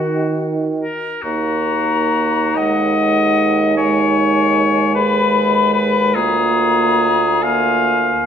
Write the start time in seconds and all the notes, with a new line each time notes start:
Already playing: D#3 D#4 F#4
0.79 A#4
1.22 D#2 A#3 D#4 F#4 A#5
2.56 G#3 D#5 F#5
3.76 G#3 C#5 G#5
4.95 G#4 B4 B5
5.73 B4
6.14 D2 A#3 F4 G#4 A#5
7.42 A#3 F4 F5 G#5